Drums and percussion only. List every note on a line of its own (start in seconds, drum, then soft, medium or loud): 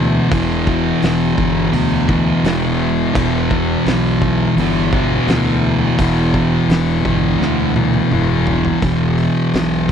0.32 kick loud
0.32 open hi-hat medium
0.67 kick medium
1.02 snare loud
1.02 open hi-hat medium
1.38 kick medium
1.73 open hi-hat medium
2.09 kick medium
2.44 snare loud
2.44 open hi-hat medium
3.15 kick loud
3.15 crash loud
3.51 kick medium
3.86 snare loud
3.86 open hi-hat medium
4.22 kick medium
4.58 open hi-hat medium
4.93 kick medium
5.28 snare loud
5.28 open hi-hat medium
5.99 kick loud
5.99 open hi-hat medium
6.34 kick medium
6.70 snare loud
6.70 open hi-hat medium
7.05 kick medium
7.42 snare medium
7.76 high tom medium
7.94 high tom medium
8.11 mid tom medium
8.47 floor tom loud
8.65 floor tom medium
8.82 kick loud
8.82 open hi-hat medium
9.18 open hi-hat medium
9.54 snare loud
9.54 open hi-hat medium